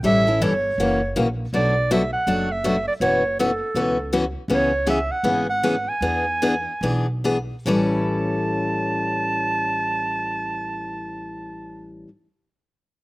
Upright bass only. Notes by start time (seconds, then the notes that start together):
0.03 A1
0.41 G1
0.78 F#1
1.16 A#1
1.53 B1
2.27 F#1
3.00 F#1
3.75 C#2
4.48 C#2
5.23 G#1
6.01 E2
6.81 B1
7.66 A1